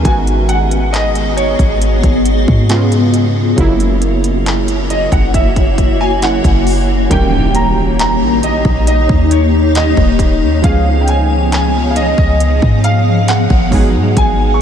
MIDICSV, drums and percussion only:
0, 0, Header, 1, 2, 480
1, 0, Start_track
1, 0, Tempo, 882353
1, 27, Time_signature, 4, 2, 24, 8
1, 7952, End_track
2, 0, Start_track
2, 0, Title_t, "Drums"
2, 27, Note_on_c, 9, 36, 110
2, 28, Note_on_c, 9, 42, 81
2, 81, Note_off_c, 9, 36, 0
2, 83, Note_off_c, 9, 42, 0
2, 149, Note_on_c, 9, 42, 42
2, 203, Note_off_c, 9, 42, 0
2, 266, Note_on_c, 9, 42, 66
2, 321, Note_off_c, 9, 42, 0
2, 388, Note_on_c, 9, 42, 57
2, 443, Note_off_c, 9, 42, 0
2, 510, Note_on_c, 9, 42, 61
2, 515, Note_on_c, 9, 39, 102
2, 564, Note_off_c, 9, 42, 0
2, 570, Note_off_c, 9, 39, 0
2, 628, Note_on_c, 9, 42, 51
2, 682, Note_off_c, 9, 42, 0
2, 748, Note_on_c, 9, 42, 56
2, 803, Note_off_c, 9, 42, 0
2, 866, Note_on_c, 9, 36, 84
2, 868, Note_on_c, 9, 42, 48
2, 920, Note_off_c, 9, 36, 0
2, 923, Note_off_c, 9, 42, 0
2, 988, Note_on_c, 9, 42, 67
2, 1042, Note_off_c, 9, 42, 0
2, 1107, Note_on_c, 9, 36, 98
2, 1107, Note_on_c, 9, 42, 48
2, 1161, Note_off_c, 9, 36, 0
2, 1161, Note_off_c, 9, 42, 0
2, 1227, Note_on_c, 9, 42, 65
2, 1281, Note_off_c, 9, 42, 0
2, 1349, Note_on_c, 9, 36, 88
2, 1403, Note_off_c, 9, 36, 0
2, 1466, Note_on_c, 9, 42, 75
2, 1472, Note_on_c, 9, 39, 112
2, 1520, Note_off_c, 9, 42, 0
2, 1527, Note_off_c, 9, 39, 0
2, 1588, Note_on_c, 9, 42, 51
2, 1642, Note_off_c, 9, 42, 0
2, 1706, Note_on_c, 9, 42, 64
2, 1761, Note_off_c, 9, 42, 0
2, 1946, Note_on_c, 9, 36, 105
2, 1947, Note_on_c, 9, 42, 79
2, 2001, Note_off_c, 9, 36, 0
2, 2001, Note_off_c, 9, 42, 0
2, 2067, Note_on_c, 9, 42, 46
2, 2122, Note_off_c, 9, 42, 0
2, 2185, Note_on_c, 9, 42, 66
2, 2239, Note_off_c, 9, 42, 0
2, 2307, Note_on_c, 9, 42, 58
2, 2361, Note_off_c, 9, 42, 0
2, 2428, Note_on_c, 9, 42, 64
2, 2433, Note_on_c, 9, 39, 103
2, 2483, Note_off_c, 9, 42, 0
2, 2488, Note_off_c, 9, 39, 0
2, 2547, Note_on_c, 9, 42, 49
2, 2601, Note_off_c, 9, 42, 0
2, 2667, Note_on_c, 9, 42, 56
2, 2721, Note_off_c, 9, 42, 0
2, 2785, Note_on_c, 9, 36, 89
2, 2787, Note_on_c, 9, 42, 49
2, 2839, Note_off_c, 9, 36, 0
2, 2842, Note_off_c, 9, 42, 0
2, 2906, Note_on_c, 9, 36, 90
2, 2907, Note_on_c, 9, 42, 72
2, 2960, Note_off_c, 9, 36, 0
2, 2961, Note_off_c, 9, 42, 0
2, 3027, Note_on_c, 9, 36, 96
2, 3027, Note_on_c, 9, 42, 47
2, 3081, Note_off_c, 9, 36, 0
2, 3081, Note_off_c, 9, 42, 0
2, 3145, Note_on_c, 9, 36, 90
2, 3145, Note_on_c, 9, 42, 62
2, 3199, Note_off_c, 9, 36, 0
2, 3200, Note_off_c, 9, 42, 0
2, 3385, Note_on_c, 9, 42, 73
2, 3392, Note_on_c, 9, 39, 121
2, 3440, Note_off_c, 9, 42, 0
2, 3446, Note_off_c, 9, 39, 0
2, 3505, Note_on_c, 9, 36, 99
2, 3508, Note_on_c, 9, 42, 52
2, 3560, Note_off_c, 9, 36, 0
2, 3562, Note_off_c, 9, 42, 0
2, 3627, Note_on_c, 9, 46, 65
2, 3681, Note_off_c, 9, 46, 0
2, 3867, Note_on_c, 9, 36, 114
2, 3868, Note_on_c, 9, 42, 85
2, 3921, Note_off_c, 9, 36, 0
2, 3922, Note_off_c, 9, 42, 0
2, 4105, Note_on_c, 9, 42, 65
2, 4160, Note_off_c, 9, 42, 0
2, 4349, Note_on_c, 9, 42, 67
2, 4354, Note_on_c, 9, 39, 102
2, 4403, Note_off_c, 9, 42, 0
2, 4408, Note_off_c, 9, 39, 0
2, 4587, Note_on_c, 9, 42, 64
2, 4641, Note_off_c, 9, 42, 0
2, 4705, Note_on_c, 9, 36, 86
2, 4760, Note_off_c, 9, 36, 0
2, 4826, Note_on_c, 9, 42, 71
2, 4881, Note_off_c, 9, 42, 0
2, 4947, Note_on_c, 9, 36, 98
2, 5001, Note_off_c, 9, 36, 0
2, 5065, Note_on_c, 9, 42, 66
2, 5119, Note_off_c, 9, 42, 0
2, 5305, Note_on_c, 9, 42, 78
2, 5311, Note_on_c, 9, 39, 125
2, 5359, Note_off_c, 9, 42, 0
2, 5366, Note_off_c, 9, 39, 0
2, 5425, Note_on_c, 9, 36, 102
2, 5480, Note_off_c, 9, 36, 0
2, 5543, Note_on_c, 9, 36, 92
2, 5547, Note_on_c, 9, 42, 65
2, 5598, Note_off_c, 9, 36, 0
2, 5601, Note_off_c, 9, 42, 0
2, 5787, Note_on_c, 9, 36, 110
2, 5788, Note_on_c, 9, 42, 87
2, 5841, Note_off_c, 9, 36, 0
2, 5842, Note_off_c, 9, 42, 0
2, 6026, Note_on_c, 9, 42, 62
2, 6080, Note_off_c, 9, 42, 0
2, 6269, Note_on_c, 9, 42, 70
2, 6274, Note_on_c, 9, 39, 105
2, 6323, Note_off_c, 9, 42, 0
2, 6328, Note_off_c, 9, 39, 0
2, 6507, Note_on_c, 9, 42, 64
2, 6561, Note_off_c, 9, 42, 0
2, 6626, Note_on_c, 9, 36, 88
2, 6680, Note_off_c, 9, 36, 0
2, 6748, Note_on_c, 9, 42, 74
2, 6802, Note_off_c, 9, 42, 0
2, 6867, Note_on_c, 9, 36, 100
2, 6921, Note_off_c, 9, 36, 0
2, 6985, Note_on_c, 9, 42, 62
2, 7040, Note_off_c, 9, 42, 0
2, 7225, Note_on_c, 9, 42, 82
2, 7232, Note_on_c, 9, 39, 118
2, 7280, Note_off_c, 9, 42, 0
2, 7286, Note_off_c, 9, 39, 0
2, 7345, Note_on_c, 9, 36, 101
2, 7400, Note_off_c, 9, 36, 0
2, 7463, Note_on_c, 9, 36, 90
2, 7466, Note_on_c, 9, 46, 66
2, 7518, Note_off_c, 9, 36, 0
2, 7521, Note_off_c, 9, 46, 0
2, 7707, Note_on_c, 9, 36, 109
2, 7707, Note_on_c, 9, 42, 85
2, 7761, Note_off_c, 9, 36, 0
2, 7761, Note_off_c, 9, 42, 0
2, 7952, End_track
0, 0, End_of_file